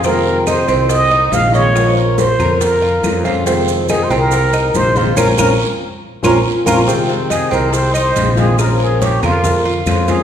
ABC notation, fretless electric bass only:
X:1
M:4/4
L:1/8
Q:1/4=140
K:Fm
V:1 name="Fretless electric bass" clef=bass
F,,3 C,,3 B,,,2- | B,,,3 F,,3 F,,2- | F,,3 C,,3 B,,,2 | B,,, B,,, z3 B,,, z B,,, |
z3 C,,3 B,,,2- | B,,,3 F,,3 F,,2 |]